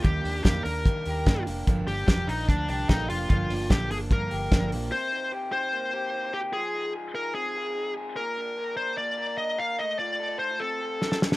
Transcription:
<<
  \new Staff \with { instrumentName = "Lead electric guitar" } { \time 4/4 \key c \minor \tempo 4 = 148 g'4 g'8 bes'2 r8 | r8 g'8 g'8 ees'8 d'8 d'8 ees'8 f'8 | f'4 g'8 aes'8 bes'4. r8 | c''4 r8 c''2 g'8 |
aes'4 r8 bes'8 aes'4. r8 | bes'4. c''8 d''4 ees''8 f''8 | ees''8 d''4 c''8 a'4. r8 | }
  \new Staff \with { instrumentName = "Clean electric guitar" } { \time 4/4 \key c \minor <ees bes d' g'>8 d'8 bes8 d'8 bes8 g'8 d'8 bes8 | g,8 d'8 bes8 d'8 bes8 g'8 d'8 bes8 | g,8 d'8 bes8 d'8 bes8 g'8 d'8 bes8 | c8 ees'8 g'8 ees'8 bes8 g'8 ees'8 g'8 |
f8 ees'8 aes'8 ees'8 c'8 aes'8 ees'8 aes'8 | bes,8 d'8 bes'8 d'8 bes8 bes'8 d'8 bes'8 | a8 f'8 a'8 ees'16 f'16 c'8 a'8 ees'16 f'16 a'8 | }
  \new Staff \with { instrumentName = "Steel-string acoustic guitar" } { \time 4/4 \key c \minor <ees g bes d'>8 <g bes d'>8 <ees g bes d'>8 <g bes d'>8 <ees g bes d'>4 <ees g bes d'>8 <g bes d'>8 | <g, d f bes d'>8 <f bes d'>8 <g, d f bes d'>8 <f bes d'>8 <d f bes d'>4 <g, d f bes d'>8 <f bes d'>8 | <g, d f bes d'>8 <f bes d'>8 <g, d f bes d'>8 <f bes d'>8 <d f bes d'>4 <g, d f bes d'>8 <f bes d'>8 | r1 |
r1 | r1 | r1 | }
  \new Staff \with { instrumentName = "Fingered electric bass" } { \clef bass \time 4/4 \key c \minor ees,8 ees,8 f,8 ees,8 ees8 ees,8 g,8 f,,8 | g,,8 g,,8 f,,8 bes,,8 d,8 c,8 bes,,8 f,,8 | g,,8 g,,8 bes,,8 g,,8 g,8 g,,8 g,,8 bes,,8 | r1 |
r1 | r1 | r1 | }
  \new DrumStaff \with { instrumentName = "Drums" } \drummode { \time 4/4 <hh bd>8 hho8 <hh bd sn>8 hho8 <hh bd>8 hho8 <hh bd sn>8 hho8 | <hh bd>8 hho8 <hh bd sn>8 hho8 <hh bd>8 hho8 <hh bd sn>8 hho8 | <hh bd>8 hho8 <hh bd sn>8 hho8 <hh bd>8 hho8 <hh bd sn>8 hho8 | r4 r4 r4 r4 |
r4 r4 r4 r4 | r4 r4 r4 r4 | r4 r4 r4 sn16 sn16 sn16 sn16 | }
>>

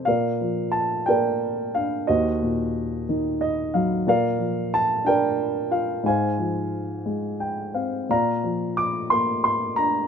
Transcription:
<<
  \new Staff \with { instrumentName = "Grand piano" } { \time 6/8 \key bes \major \tempo 4. = 60 << { f''4 a''8 g''4 f''8 | ees''4. r8 ees''8 f''8 | f''4 a''8 g''4 f''8 | aes''4. r8 g''8 f''8 |
bes''4 d'''8 c'''8 c'''8 bes''8 | } \\ { <bes' d''>4. <bes' d''>4. | <ges' c''>4. r4. | <bes' d''>4. <bes' d''>4. | <c'' f''>4. r4. |
<d'' f''>4. r4. | } >> }
  \new Staff \with { instrumentName = "Grand piano" } { \clef bass \time 6/8 \key bes \major bes,8 f4 bes4 d'8 | ees,8 bes,4 ees4 ges8 | bes,8 f4 d'4 f'8 | aes,8 f4 aes4 c'8 |
bes,8 f4 bes4 d'8 | }
>>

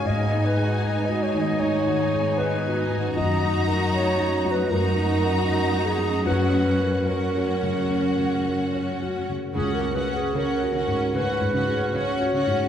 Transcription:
<<
  \new Staff \with { instrumentName = "Violin section" } { \time 4/4 \key ees \minor \tempo 4 = 76 aes''1 | bes''2 bes''2 | ges''4 ges''2~ ges''8. r16 | ges''8 ges''8 ges''8 ges''8 ges''8 ges''8 ges''8 ges''8 | }
  \new Staff \with { instrumentName = "Clarinet" } { \time 4/4 \key ees \minor ees''8 ces''8. ees''16 des''16 ees''16 des''4 ces''4 | ees''8. r16 des''8. ces''16 bes'4. aes'8 | ces''4 bes'2 r4 | aes'16 bes'16 ces''16 aes'16 bes'4 ces''4 des''4 | }
  \new Staff \with { instrumentName = "Violin section" } { \time 4/4 \key ees \minor aes16 ces'16 ees'16 ges'16 ees'16 ces'16 aes16 ces'16 ees'16 ges'16 ees'16 ces'16 aes16 ces'16 ees'16 ges'16 | ges'2 ges'2 | ges'4 ges'2~ ges'8. r16 | ges'8 ges'8 ges'8 ges'8 ges'8 ges'8 ges'8 ges'8 | }
  \new Staff \with { instrumentName = "Felt piano" } { \time 4/4 \key ees \minor \tuplet 3/2 { aes,8 ees'8 aes'8 ees''8 ges'8 ees8 ees'8 ees8 aes'8 ees''8 ges'8 ees8 } | \tuplet 3/2 { ges,8 ees'8 bes'8 ees''8 ges'8 ges8 ges,8 ees'8 bes'8 ees''4 ges8 } | \tuplet 3/2 { ges,8 des'8 bes'8 des''8 ges'8 des8 des'8 des8 bes'8 des''8 ges'8 des8 } | \tuplet 3/2 { des,8 des'8 aes'8 des''8 ges'8 aes,8 des'8 aes,8 aes'8 des''8 ges'8 aes,8 } | }
  \new Staff \with { instrumentName = "Viola section" } { \time 4/4 \key ees \minor ees'1 | ees'2 ees'2 | des'4 des'2~ des'8. r16 | des'8 des'8 des'8 des'8 des'8 des'8 des'8 des'8 | }
  \new Staff \with { instrumentName = "Cello section" } { \clef bass \time 4/4 \key ees \minor aes,1 | ges,1~ | ges,2.~ ges,8. r16 | des8 des8 des8 des8 des8 des8 des8 des8 | }
>>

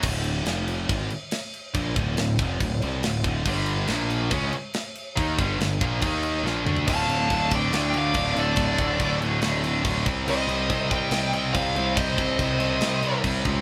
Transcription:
<<
  \new Staff \with { instrumentName = "Lead electric guitar" } { \time 4/4 \key d \phrygian \tempo 4 = 141 r1 | r1 | r1 | r1 |
a''4. g''4 f''4 d''8~ | d''4. r2 r8 | ees''4. g''4 g''8 f''4 | ees''2. r4 | }
  \new Staff \with { instrumentName = "Lead electric guitar" } { \time 4/4 \key d \phrygian r1 | r1 | r1 | r1 |
f''4. d''4 d''4 a'8~ | a'4. r2 r8 | c''4. ees''4 ees''8 c''4 | c''2. r4 | }
  \new Staff \with { instrumentName = "Distorted electric guitar" } { \clef bass \time 4/4 \key d \phrygian <d, a, d>4 <f, c f>4 <gis, ees gis>8 r4. | <bes, f bes>8 <d, a, d>8 <d, a,>8 <f, c f>8 <d, a,>8 <c g c'>8 <d, a,>8 <d, a, d>8 | <g, d g>4 <bes, f bes>4 <cis gis cis'>8 r4. | <ees bes ees'>8 <g, d g>8 <g, d>8 <bes, f bes>8 <ees bes ees'>4 <bes, f bes>8 <d a d'>8 |
<d, a, d>8 <d, a, d>8 <d, a, d>8 <d, a, d>8 <d, a, d>8 <d, a, d>8 <d, a, d>8 <d, a, d>8 | <d, a, d>8 <d, a, d>8 <d, a, d>8 <d, a, d>8 <d, a, d>8 <d, a, d>8 <d, a, d>8 <c g c'>8 | <c g c'>8 <c g c'>8 <c g c'>8 <c g c'>8 <c g c'>8 <c g c'>8 <c g c'>8 <c g c'>8 | <c g c'>8 <c g c'>8 <c g c'>8 <c g c'>8 <c g c'>8 <c g c'>8 <c g c'>8 <c g c'>8 | }
  \new Staff \with { instrumentName = "Distorted electric guitar" } { \clef bass \time 4/4 \key d \phrygian r1 | r1 | <g, d g>4 <bes, f bes>4 <cis gis cis'>8 r4. | <ees bes ees'>8 <g, d g>8 <g, d>8 <bes, f bes>8 <ees bes ees'>4 <bes, f bes>8 <d a d'>8 |
<d, a, d>8 <d, a, d>8 <d, a, d>8 <d, a, d>8 <d, a, d>8 <d, a, d>8 <d, a, d>8 <d, a, d>8 | <d, a, d>8 <d, a, d>8 <d, a, d>8 <d, a, d>8 <d, a, d>8 <d, a, d>8 <d, a, d>8 <c g c'>8 | <c g c'>8 <c g c'>8 <c g c'>8 <c g c'>8 <c g c'>8 <c g c'>8 <c g c'>8 <c g c'>8 | <c g c'>8 <c g c'>8 <c g c'>8 <c g c'>8 <c g c'>8 <c g c'>8 <c g c'>8 <c g c'>8 | }
  \new Staff \with { instrumentName = "Picked electric bass" } { \clef bass \time 4/4 \key d \phrygian d,,4 f,,4 gis,,8 r4. | bes,,8 d,,8 d,,8 f,,8 d,,8 c,8 d,,8 d,,8 | g,,4 bes,,4 cis,8 r4. | ees,8 g,,8 g,,8 bes,,8 ees,4 bes,,8 d,8 |
d,,8 d,,8 d,,4 d,4 d,,8 d,,8 | d,,8 d,,8 d,,4 d,,4 d,,8 c,8 | c,8 c,8 c,4 c,4 c,8 c,8 | c,8 c,8 c,4 c,4 c,8 cis,8 | }
  \new DrumStaff \with { instrumentName = "Drums" } \drummode { \time 4/4 <cymc bd>8 cymc8 <cymc sn>8 cymc8 <cymc bd>8 cymc8 <cymc sn>8 cymc8 | <cymc bd>8 <cymc bd>8 <cymc sn>8 <cymc bd>8 <cymc bd>8 cymc8 <cymc sn>8 <cymc bd>8 | <cymc bd>8 cymc8 <cymc sn>8 cymc8 <cymc bd>8 cymc8 <cymc sn>8 cymc8 | <cymc bd>8 <cymc bd>8 <cymc sn>8 <cymc bd>8 <cymc bd>8 cymc8 sn8 toml16 tomfh16 |
<cymc bd>8 cymc8 <cymc bd>8 <cymc bd>8 <cymc sn>8 cymc8 <cymc bd>8 cymc8 | <cymc bd>8 <cymc bd>8 <cymc bd>8 cymc8 <cymc sn>8 cymc8 <cymc bd>8 <cymc bd>8 | cymc8 cymc8 <cymc bd>8 <cymc bd>8 <cymc sn>8 cymc8 <cymc bd>8 cymc8 | <cymc bd>8 <cymc bd>8 <cymc bd>8 cymc8 <cymc sn>8 cymc8 <cymc bd>8 <cymc bd>8 | }
>>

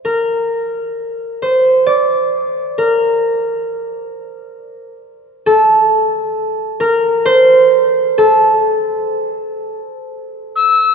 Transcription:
<<
  \new Staff \with { instrumentName = "Tin whistle" } { \time 3/4 \key bes \lydian \tempo 4 = 66 r2. | r2. | r2. | r2 r8 e'''8 | }
  \new Staff \with { instrumentName = "Harp" } { \time 3/4 \key bes \lydian bes'4. c''8 d''4 | bes'4 r2 | a'4. bes'8 c''4 | a'2~ a'8 r8 | }
>>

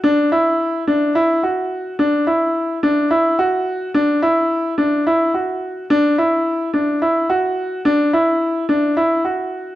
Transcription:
\new Staff \with { instrumentName = "Grand piano" } { \time 7/8 \key d \major \tempo 4 = 108 d'8 e'4 d'8 e'8 fis'4 | d'8 e'4 d'8 e'8 fis'4 | d'8 e'4 d'8 e'8 fis'4 | d'8 e'4 d'8 e'8 fis'4 |
d'8 e'4 d'8 e'8 fis'4 | }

